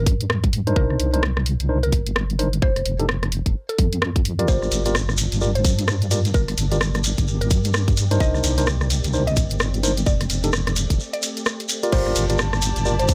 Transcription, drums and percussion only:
0.06 kick, open hi-hat
0.21 closed hi-hat
0.30 cross-stick
0.44 kick, closed hi-hat
0.53 open hi-hat
0.67 closed hi-hat
0.76 kick
0.90 cross-stick
1.00 open hi-hat
1.14 closed hi-hat
1.23 cross-stick
1.37 cross-stick
1.46 open hi-hat
1.60 closed hi-hat
1.83 closed hi-hat
1.92 kick, open hi-hat
2.06 closed hi-hat
2.16 cross-stick
2.30 closed hi-hat
2.39 open hi-hat
2.53 closed hi-hat
2.62 kick
2.76 cross-stick, open hi-hat
2.86 open hi-hat
2.99 closed hi-hat
3.09 cross-stick
3.23 cross-stick, closed hi-hat
3.32 open hi-hat
3.46 kick, closed hi-hat
3.69 closed hi-hat
3.78 kick, open hi-hat
3.93 closed hi-hat
4.02 cross-stick
4.16 kick, closed hi-hat
4.25 open hi-hat
4.39 closed hi-hat
4.48 kick, shekere
4.62 cross-stick, shekere
4.72 open hi-hat, shekere
4.85 closed hi-hat, shekere
4.95 cross-stick, shekere
5.09 cross-stick, shekere
5.17 open hi-hat, shekere
5.32 closed hi-hat, shekere
5.41 shekere
5.55 closed hi-hat, shekere
5.65 kick, open hi-hat, shekere
5.79 closed hi-hat, shekere
5.88 cross-stick, shekere
6.01 closed hi-hat, shekere
6.11 open hi-hat, shekere
6.25 closed hi-hat, shekere
6.34 kick, shekere
6.48 cross-stick, open hi-hat, shekere
6.58 open hi-hat, shekere
6.72 closed hi-hat, shekere
6.81 cross-stick, shekere
6.94 cross-stick, closed hi-hat, shekere
7.04 open hi-hat, shekere
7.18 kick, closed hi-hat, shekere
7.27 shekere
7.41 closed hi-hat, shekere
7.51 kick, open hi-hat, shekere
7.64 closed hi-hat, shekere
7.74 cross-stick, shekere
7.88 kick, closed hi-hat, shekere
7.97 open hi-hat, shekere
8.11 closed hi-hat, shekere
8.20 kick, shekere
8.34 cross-stick, shekere
8.44 open hi-hat, shekere
8.58 closed hi-hat, shekere
8.67 cross-stick, shekere
8.81 cross-stick, shekere
8.90 open hi-hat, shekere
9.04 closed hi-hat, shekere
9.13 shekere
9.27 closed hi-hat, shekere
9.37 kick, open hi-hat, shekere
9.50 closed hi-hat, shekere
9.60 cross-stick, shekere
9.74 closed hi-hat, shekere
9.83 open hi-hat, shekere
9.97 closed hi-hat, shekere
10.06 kick, shekere
10.21 cross-stick, open hi-hat, shekere
10.30 open hi-hat, shekere
10.43 closed hi-hat, shekere
10.53 cross-stick, shekere
10.67 cross-stick, closed hi-hat, shekere
10.76 open hi-hat, shekere
10.90 kick, closed hi-hat, shekere
11.00 shekere
11.13 closed hi-hat, shekere
11.22 open hi-hat, shekere
11.37 closed hi-hat, shekere
11.46 cross-stick, shekere
11.60 closed hi-hat, shekere
11.69 open hi-hat, shekere
11.83 closed hi-hat, shekere
11.92 kick, crash, shekere
12.06 cross-stick, shekere
12.15 open hi-hat, shekere
12.29 closed hi-hat, shekere
12.38 cross-stick, shekere
12.53 cross-stick, shekere
12.62 open hi-hat, shekere
12.76 closed hi-hat, shekere
12.85 shekere
12.99 closed hi-hat, shekere
13.08 kick, open hi-hat, shekere

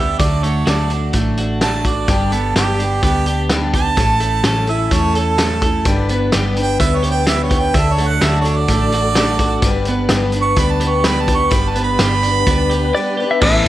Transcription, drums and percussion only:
0.20 kick, closed hi-hat
0.44 closed hi-hat
0.67 snare, closed hi-hat
0.90 closed hi-hat
1.13 kick, closed hi-hat
1.37 closed hi-hat
1.61 snare, closed hi-hat
1.85 kick, closed hi-hat
2.08 kick, closed hi-hat
2.32 closed hi-hat
2.56 snare, closed hi-hat
2.80 closed hi-hat
3.02 kick, closed hi-hat
3.26 closed hi-hat
3.50 snare, closed hi-hat
3.74 kick, closed hi-hat
3.97 kick, closed hi-hat
4.20 closed hi-hat
4.44 snare, closed hi-hat
4.67 closed hi-hat
4.91 kick, closed hi-hat
5.15 closed hi-hat
5.38 snare, closed hi-hat
5.62 kick, closed hi-hat
5.85 kick, closed hi-hat
6.09 closed hi-hat
6.32 snare, closed hi-hat
6.56 closed hi-hat
6.80 kick, closed hi-hat
7.04 closed hi-hat
7.27 snare, closed hi-hat
7.51 kick, closed hi-hat
7.74 kick, closed hi-hat
7.98 closed hi-hat
8.21 snare, closed hi-hat
8.45 closed hi-hat
8.68 kick, closed hi-hat
8.92 closed hi-hat
9.15 snare, closed hi-hat
9.39 kick, closed hi-hat
9.62 kick, closed hi-hat
9.85 closed hi-hat
10.09 snare, closed hi-hat
10.32 closed hi-hat
10.56 kick, closed hi-hat
10.81 closed hi-hat
11.04 snare, closed hi-hat
11.28 kick, closed hi-hat
11.51 kick, closed hi-hat
11.76 closed hi-hat
11.99 snare, closed hi-hat
12.23 closed hi-hat
12.47 kick, closed hi-hat
12.71 closed hi-hat
13.41 kick, crash

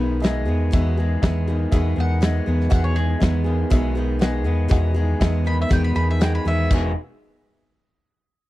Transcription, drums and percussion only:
0.24 snare, closed hi-hat
0.73 kick, closed hi-hat
1.23 kick, snare, closed hi-hat
1.72 kick, closed hi-hat
2.22 snare, closed hi-hat
2.61 snare
2.72 kick, closed hi-hat
3.22 kick, snare, closed hi-hat
3.71 kick, closed hi-hat
4.21 snare, closed hi-hat
4.71 kick, closed hi-hat
5.21 kick, snare, closed hi-hat
5.71 kick, closed hi-hat
6.21 snare, closed hi-hat
6.71 kick, crash

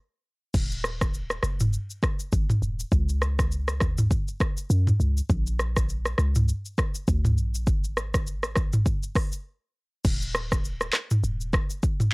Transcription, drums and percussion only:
0.54 kick, crash, shaker
0.71 shaker
0.84 cross-stick, shaker
1.01 kick, cross-stick, shaker
1.14 shaker
1.30 cross-stick, shaker
1.43 cross-stick, shaker
1.60 mid tom, shaker
1.73 shaker
1.90 shaker
2.03 kick, cross-stick, shaker
2.20 shaker
2.32 kick, shaker
2.50 mid tom, shaker
2.63 shaker
2.80 shaker
2.92 kick, shaker
3.09 shaker
3.22 cross-stick, shaker
3.39 kick, cross-stick, shaker
3.52 shaker
3.68 cross-stick, shaker
3.80 kick, cross-stick, shaker
3.98 mid tom, shaker
4.11 kick, shaker
4.28 shaker
4.40 kick, cross-stick, shaker
4.57 shaker
4.70 shaker
4.87 mid tom, shaker
5.00 shaker
5.17 shaker
5.29 kick, shaker
5.47 shaker
5.59 cross-stick, shaker
5.76 kick, cross-stick, shaker
5.89 shaker
6.06 cross-stick, shaker
6.18 cross-stick, shaker
6.35 mid tom, shaker
6.48 shaker
6.65 shaker
6.78 kick, cross-stick, shaker
6.95 shaker
7.08 kick, shaker
7.25 mid tom, shaker
7.38 shaker
7.55 shaker
7.67 kick, shaker
7.84 shaker
7.97 cross-stick, shaker
8.14 kick, cross-stick, shaker
8.27 shaker
8.43 cross-stick, shaker
8.56 kick, cross-stick, shaker
8.73 mid tom, shaker
8.86 kick, shaker
9.03 shaker
9.16 kick, cross-stick, open hi-hat, shaker
9.32 shaker
10.05 kick, crash, shaker
10.22 shaker
10.35 cross-stick, shaker
10.52 kick, cross-stick, shaker
10.65 shaker
10.81 cross-stick, shaker
10.93 cross-stick, clap, shaker
11.11 mid tom, shaker
11.24 shaker
11.41 shaker
11.53 kick, cross-stick, shaker
11.70 shaker
11.83 kick, shaker
12.00 mid tom, shaker

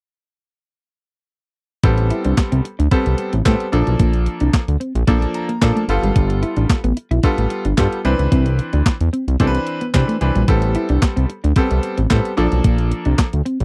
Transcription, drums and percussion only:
1.83 kick, closed hi-hat
1.98 closed hi-hat
2.10 closed hi-hat
2.25 closed hi-hat
2.38 kick, snare, clap, closed hi-hat
2.52 closed hi-hat
2.65 closed hi-hat
2.80 closed hi-hat
2.91 kick, closed hi-hat
3.06 closed hi-hat
3.18 closed hi-hat
3.33 closed hi-hat
3.46 kick, snare, clap, closed hi-hat
3.60 closed hi-hat
3.73 closed hi-hat
3.87 closed hi-hat
3.99 kick, closed hi-hat
4.13 closed hi-hat
4.26 closed hi-hat
4.40 closed hi-hat
4.54 kick, snare, clap, closed hi-hat
4.68 closed hi-hat
4.81 closed hi-hat
4.95 closed hi-hat
5.07 kick, closed hi-hat
5.22 closed hi-hat
5.34 closed hi-hat
5.49 closed hi-hat
5.62 kick, snare, clap, closed hi-hat
5.77 closed hi-hat
5.89 closed hi-hat
6.03 closed hi-hat
6.16 kick, closed hi-hat
6.30 closed hi-hat
6.43 closed hi-hat
6.57 closed hi-hat
6.70 kick, snare, clap, closed hi-hat
6.84 closed hi-hat
6.97 closed hi-hat
7.11 closed hi-hat
7.23 kick, closed hi-hat
7.38 closed hi-hat
7.50 closed hi-hat
7.65 closed hi-hat
7.78 kick, snare, clap, closed hi-hat
7.93 closed hi-hat
8.05 closed hi-hat
8.19 closed hi-hat
8.32 kick, closed hi-hat
8.46 closed hi-hat
8.59 closed hi-hat
8.73 closed hi-hat
8.86 kick, snare, clap, closed hi-hat
9.01 closed hi-hat
9.14 closed hi-hat
9.28 closed hi-hat
9.40 kick, closed hi-hat
9.55 closed hi-hat
9.67 closed hi-hat
9.81 closed hi-hat
9.94 kick, snare, clap, closed hi-hat
10.09 closed hi-hat
10.21 closed hi-hat
10.36 closed hi-hat
10.48 kick, closed hi-hat
10.62 closed hi-hat
10.75 closed hi-hat
10.89 closed hi-hat
11.02 kick, snare, clap, closed hi-hat
11.17 closed hi-hat
11.30 closed hi-hat
11.44 closed hi-hat
11.56 kick, closed hi-hat
11.71 closed hi-hat
11.83 closed hi-hat
11.98 closed hi-hat
12.10 kick, snare, clap, closed hi-hat
12.25 closed hi-hat
12.38 closed hi-hat
12.52 closed hi-hat
12.64 kick, closed hi-hat
12.78 closed hi-hat
12.92 closed hi-hat
13.05 closed hi-hat
13.18 kick, snare, clap, closed hi-hat
13.33 closed hi-hat
13.46 closed hi-hat
13.60 closed hi-hat

